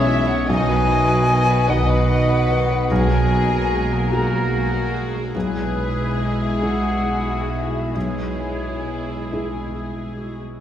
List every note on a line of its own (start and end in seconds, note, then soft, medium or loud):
0.00 0.33 B1 medium
0.00 0.49 B1 medium
0.00 0.34 B2 medium
0.00 0.46 B2 medium
0.00 0.44 G#3 medium
0.00 0.51 G#3 medium
0.00 0.26 C#4 medium
0.00 0.44 C#4 medium
0.00 0.44 E4 medium
0.00 0.45 E4 medium
0.00 0.45 G#4 medium
0.00 0.51 G#4 medium
0.00 0.51 C#5 medium
0.00 0.52 C#5 medium
0.00 0.29 E5 loud
0.00 0.51 E5 medium
0.00 0.51 G#5 medium
0.06 0.28 E3 medium
0.06 0.51 E4 medium
0.06 0.28 E4 medium
0.06 0.28 E5 medium
0.26 0.48 G#3 medium
0.26 0.51 C#4 medium
0.26 0.48 C#4 medium
0.26 0.47 C#5 medium
0.26 0.50 F#5 loud
0.47 1.55 B1 medium
0.47 2.87 B1 medium
0.47 2.89 B2 medium
0.47 1.55 B2 medium
0.47 0.67 D#3 medium
0.47 2.86 B3 medium
0.47 0.67 D#4 medium
0.47 0.88 D#4 medium
0.47 1.67 F#4 medium
0.47 2.86 D#5 medium
0.47 0.67 D#5 medium
0.47 1.70 D#5 medium
0.47 1.71 G#5 loud
0.69 0.89 F#3 medium
0.69 3.10 F#3 medium
0.69 0.89 F#4 medium
0.69 0.89 B4 medium
0.88 1.09 D#3 medium
0.88 2.68 B3 medium
0.88 1.09 D#4 medium
0.88 1.29 E4 medium
0.88 1.09 D#5 medium
1.08 1.29 F#3 medium
1.08 1.48 D#4 medium
1.08 1.30 F#4 medium
1.08 1.29 B4 medium
1.28 1.48 D#3 medium
1.28 1.48 D#4 medium
1.28 1.69 F#4 medium
1.28 2.28 B4 medium
1.28 1.47 D#5 medium
1.48 1.69 F#3 medium
1.48 2.48 D#4 medium
1.48 1.69 F#4 medium
1.48 1.69 B4 medium
1.67 2.76 B1 medium
1.67 2.76 B2 medium
1.67 1.89 D#3 medium
1.67 2.86 D#4 medium
1.67 1.90 D#4 medium
1.67 2.88 F#4 medium
1.67 2.89 B4 medium
1.67 2.86 B4 medium
1.67 2.08 D#5 medium
1.67 1.89 D#5 medium
1.67 2.89 D#5 medium
1.67 2.93 F#5 medium
1.89 2.09 F#3 medium
1.89 2.09 F#4 medium
1.89 2.09 B4 medium
1.89 2.94 B5 medium
2.09 2.28 D#3 medium
2.09 2.28 D#4 medium
2.09 2.28 D#5 medium
2.09 2.94 D#5 medium
2.29 2.49 F#3 medium
2.29 2.50 F#4 medium
2.29 2.94 B4 medium
2.29 2.50 B4 medium
2.50 2.71 D#3 medium
2.50 2.94 D#4 medium
2.50 2.71 D#4 medium
2.50 2.70 D#5 medium
2.70 2.90 F#3 medium
2.70 2.90 F#4 medium
2.70 2.91 B4 medium
2.90 3.98 B1 medium
2.90 4.09 B1 medium
2.90 5.33 B2 medium
2.90 3.98 B2 medium
2.90 3.10 G#3 medium
2.90 5.19 A#3 medium
2.90 4.10 F#4 medium
2.90 5.19 F#4 medium
2.90 3.10 F#4 medium
2.90 4.12 G#4 medium
2.90 3.09 G#4 medium
2.90 4.10 A#4 medium
2.90 4.13 G#5 loud
3.11 5.38 F#3 soft
3.11 3.31 F#3 medium
3.11 3.31 G#4 medium
3.11 3.31 A#4 medium
3.31 5.14 G#3 soft
3.31 3.52 G#3 medium
3.31 3.52 F#4 medium
3.31 3.52 G#4 medium
3.52 3.72 F#3 medium
3.52 4.93 F#4 medium
3.52 3.72 G#4 medium
3.52 3.72 A#4 medium
3.71 3.91 G#3 medium
3.71 3.91 F#4 medium
3.71 3.91 G#4 medium
3.71 5.38 A#4 medium
3.91 4.13 F#3 medium
3.91 4.72 G#4 medium
3.91 4.13 G#4 soft
3.91 4.13 A#4 soft
4.11 5.20 B1 medium
4.11 5.20 B2 medium
4.11 4.33 G#3 medium
4.11 5.34 F#4 medium
4.11 5.31 F#4 soft
4.11 5.06 F#4 medium
4.11 4.33 F#4 medium
4.11 4.33 G#4 soft
4.11 5.31 G#4 medium
4.11 5.05 A#4 medium
4.11 4.52 F#5 medium
4.11 4.53 A#5 medium
4.32 4.53 F#3 soft
4.32 4.54 G#4 soft
4.32 4.53 A#4 soft
4.32 5.38 A#5 medium
4.53 4.73 G#3 soft
4.53 4.72 F#4 soft
4.53 4.72 G#4 soft
4.53 5.38 F#5 soft
4.73 4.94 F#3 soft
4.73 6.18 G#4 soft
4.73 4.94 G#4 soft
4.73 4.93 A#4 soft
4.94 5.15 G#3 soft
4.94 5.38 F#4 soft
4.94 5.15 F#4 soft
4.94 5.14 G#4 soft
5.14 5.36 F#3 soft
5.14 5.75 G#3 soft
5.14 5.36 G#4 soft
5.14 5.35 A#4 soft
5.34 7.91 B1 medium
5.34 10.38 B1 medium
5.34 7.94 B2 medium
5.34 10.38 B2 medium
5.34 10.26 G#3 medium
5.34 7.92 G#3 medium
5.34 7.92 E4 medium
5.34 10.26 E4 medium
5.34 7.91 G#4 medium
5.34 6.63 G#4 medium
5.34 6.20 B4 medium
5.38 7.93 E4 medium
5.56 7.99 B3 soft
5.76 7.71 G#3 soft
5.98 6.40 E4 soft
6.18 7.27 G#4 soft
6.18 6.43 D#5 medium
6.41 7.48 E4 soft
6.41 6.64 E5 medium
6.62 7.91 E4 soft
6.62 7.95 F#4 medium
6.62 7.91 G#4 soft
6.62 7.05 E5 soft
6.62 7.52 F#5 medium
6.85 9.52 G#5 soft
7.06 9.29 E5 soft
7.28 8.85 G#4 soft
7.50 8.63 E4 soft
7.50 7.97 E5 medium
7.72 8.39 G#3 soft
7.94 10.59 B1 soft
7.94 10.60 B2 soft
7.94 10.38 G#3 soft
7.94 9.96 E4 soft
7.94 9.19 E4 soft
7.94 10.39 E4 soft
7.94 10.38 G#4 soft
7.94 10.25 G#4 soft
7.94 9.30 C#5 medium
8.18 10.60 B3 soft
8.41 10.42 G#3 soft
8.64 9.07 E4 soft
8.86 9.96 G#4 soft
9.08 10.19 E4 soft
9.31 9.76 E4 soft
9.31 10.60 E4 soft
9.31 10.60 G#4 soft
9.31 9.74 E5 soft
9.53 10.60 G#5 soft
9.75 10.19 G#4 soft
9.75 10.60 E5 soft
9.97 10.60 G#4 soft
10.18 10.60 E4 soft
10.18 10.60 F#4 soft
10.43 10.60 G#3 soft